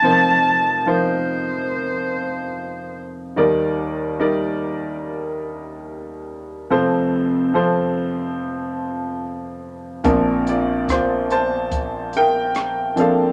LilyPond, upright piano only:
<<
  \new Staff \with { instrumentName = "Upright piano" } { \time 4/4 \key bes \major \tempo 4 = 72 << { r1 | r1 | r1 | r8 <f' d''>8 <f' c''>8 <c'' a''>4 <bes' g''>4 <a' f''>8 | } \\ { <f ees' bes' c''>4 <f ees' bes' c''>4. r4. | <g ees' bes' d''>4 <g ees' bes' d''>4. r4. | <f c' a' c''>4 <f c' a' c''>4. r4. | <f c' d' bes'>4. r2 <f bes c' d'>8 | } >> }
  \new Staff \with { instrumentName = "Upright piano" } { \clef bass \time 4/4 \key bes \major <f,, f,>1 | <ees, ees>1 | <f,, f,>1 | <bes,, bes,>1 | }
>>